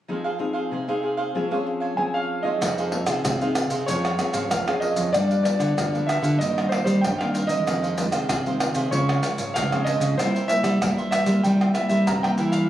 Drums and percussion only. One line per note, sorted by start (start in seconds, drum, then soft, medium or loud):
2.62 pandeiro medium
2.62 tamborim medium
2.62 maracas medium
2.62 surdo soft
2.78 pandeiro soft
2.78 maracas soft
2.92 pandeiro medium
3.07 pandeiro medium
3.07 tamborim medium
3.07 maracas medium
3.07 surdo soft
3.25 pandeiro medium
3.25 tamborim medium
3.25 maracas medium
3.25 surdo loud
3.41 pandeiro soft
3.41 maracas soft
3.55 pandeiro medium
3.55 tamborim medium
3.55 maracas medium
3.55 surdo soft
3.70 pandeiro medium
3.70 maracas medium
3.88 pandeiro medium
3.88 maracas medium
3.88 surdo medium
4.05 pandeiro soft
4.05 tamborim medium
4.05 maracas soft
4.19 pandeiro medium
4.19 tamborim medium
4.19 maracas medium
4.34 pandeiro medium
4.34 maracas medium
4.34 surdo soft
4.51 pandeiro medium
4.51 tamborim medium
4.51 maracas medium
4.51 surdo medium
4.68 pandeiro soft
4.68 tamborim medium
4.68 maracas soft
4.82 pandeiro medium
4.96 pandeiro medium
4.96 maracas medium
4.96 surdo soft
5.14 pandeiro medium
5.14 tamborim medium
5.14 maracas medium
5.14 surdo medium
5.31 pandeiro soft
5.31 maracas soft
5.45 pandeiro medium
5.45 maracas medium
5.60 pandeiro medium
5.60 tamborim medium
5.60 maracas medium
5.60 surdo soft
5.78 pandeiro medium
5.78 tamborim medium
5.78 maracas medium
5.78 surdo medium
5.95 pandeiro soft
5.95 maracas soft
6.09 pandeiro medium
6.09 tamborim medium
6.09 maracas medium
6.09 surdo soft
6.24 pandeiro medium
6.24 maracas medium
6.41 pandeiro medium
6.41 maracas medium
6.41 surdo medium
6.58 pandeiro soft
6.58 tamborim medium
6.58 maracas soft
6.72 pandeiro medium
6.72 tamborim medium
6.72 surdo soft
6.87 pandeiro medium
6.87 maracas medium
6.87 surdo soft
7.04 pandeiro medium
7.04 tamborim medium
7.04 maracas medium
7.04 surdo medium
7.21 pandeiro soft
7.21 tamborim medium
7.21 maracas soft
7.35 pandeiro medium
7.35 maracas medium
7.49 pandeiro medium
7.49 maracas medium
7.49 surdo soft
7.67 pandeiro medium
7.67 tamborim medium
7.67 maracas medium
7.67 surdo medium
7.84 pandeiro soft
7.84 maracas soft
7.98 pandeiro medium
7.98 maracas medium
8.12 pandeiro medium
8.12 tamborim medium
8.12 maracas medium
8.12 surdo soft
8.29 pandeiro medium
8.29 tamborim medium
8.29 maracas medium
8.29 surdo loud
8.46 pandeiro soft
8.46 maracas soft
8.60 pandeiro medium
8.60 tamborim medium
8.60 maracas medium
8.60 surdo soft
8.75 pandeiro medium
8.75 maracas medium
8.92 pandeiro medium
8.92 maracas medium
8.92 surdo medium
9.09 pandeiro soft
9.09 tamborim medium
9.09 maracas soft
9.23 pandeiro medium
9.23 tamborim medium
9.23 maracas medium
9.23 surdo soft
9.38 pandeiro medium
9.38 maracas medium
9.38 surdo soft
9.56 pandeiro medium
9.56 tamborim medium
9.56 maracas medium
9.56 surdo medium
9.72 pandeiro soft
9.72 tamborim medium
9.72 maracas soft
9.87 pandeiro medium
9.87 maracas medium
10.01 pandeiro medium
10.01 maracas medium
10.01 surdo soft
10.19 pandeiro medium
10.19 tamborim medium
10.19 maracas medium
10.19 surdo medium
10.36 pandeiro soft
10.36 maracas soft
10.49 pandeiro medium
10.49 maracas medium
10.64 pandeiro medium
10.64 tamborim medium
10.64 maracas medium
10.64 surdo soft
10.82 pandeiro medium
10.82 tamborim medium
10.82 maracas medium
10.82 surdo loud
10.98 pandeiro soft
10.98 maracas soft
11.12 pandeiro medium
11.12 tamborim medium
11.12 maracas medium
11.12 surdo soft
11.26 pandeiro medium
11.26 maracas medium
11.45 pandeiro medium
11.45 maracas medium
11.45 surdo medium
11.61 pandeiro soft
11.61 tamborim medium
11.61 maracas soft
11.75 pandeiro medium
11.75 tamborim medium
11.75 maracas medium
11.75 surdo soft
11.90 pandeiro soft
11.90 maracas medium
11.90 surdo soft
12.07 pandeiro medium
12.07 tamborim medium
12.07 maracas medium
12.07 surdo loud
12.24 pandeiro soft
12.24 tamborim medium
12.24 maracas soft
12.38 pandeiro medium
12.38 maracas medium
12.53 pandeiro medium
12.53 maracas medium
12.53 surdo soft